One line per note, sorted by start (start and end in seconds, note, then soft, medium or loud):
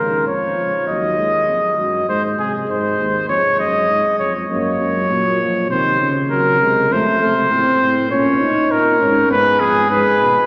0.00 0.27 D#2 soft
0.00 0.26 C#3 medium
0.00 0.23 A#4 medium
0.27 0.57 F2 medium
0.27 0.87 F3 medium
0.27 0.87 C#5 medium
0.58 0.72 C#2 soft
0.88 1.47 D#2 medium
0.88 1.18 F#3 medium
0.88 2.06 D#5 medium
1.18 1.78 G#3 medium
1.48 1.62 F2 soft
1.78 2.08 F#2 medium
1.78 2.08 F#3 medium
2.09 2.38 G#2 medium
2.09 3.27 G#3 medium
2.09 2.22 C5 medium
2.39 2.69 C3 medium
2.39 2.52 G#4 medium
2.69 2.98 G#2 medium
2.69 3.28 C5 medium
2.99 3.29 D#2 medium
3.29 3.43 F2 medium
3.29 4.32 G#3 medium
3.29 3.59 C#5 medium
3.59 3.89 F#2 medium
3.59 4.19 D#5 medium
3.89 4.03 G#2 medium
4.19 4.49 F2 medium
4.19 4.33 C#5 medium
4.49 4.79 F#2 medium
4.49 5.11 A#3 medium
4.49 5.67 C#5 medium
4.80 5.10 F#2 medium
5.10 5.72 A#2 medium
5.10 5.40 F#3 medium
5.41 5.70 F3 medium
5.70 6.02 C3 medium
5.70 6.09 D#3 medium
5.70 6.09 C5 medium
6.01 6.63 C#3 medium
6.31 6.59 F#3 medium
6.31 6.94 A#4 medium
6.61 6.91 C3 medium
6.61 6.90 G#3 medium
6.91 7.05 F2 medium
6.91 7.20 A3 medium
6.91 8.10 C5 medium
7.21 7.50 C3 medium
7.21 7.34 A3 medium
7.50 7.64 A2 medium
7.50 8.09 C4 medium
7.80 8.10 A2 medium
8.10 8.49 A#2 medium
8.10 8.39 C#4 medium
8.10 8.73 C#5 medium
8.40 8.99 D#4 medium
8.70 9.02 A#2 medium
8.70 9.30 A#4 medium
9.00 9.29 G#2 medium
9.00 9.32 C#4 medium
9.30 9.60 G#2 medium
9.30 9.90 B3 medium
9.30 10.46 G#4 medium
9.30 9.61 B4 medium
9.60 9.90 F2 medium
9.60 9.89 G#4 medium
9.90 10.04 G#2 medium
9.90 10.46 G#3 medium
9.90 10.46 B4 medium
10.20 10.34 B2 medium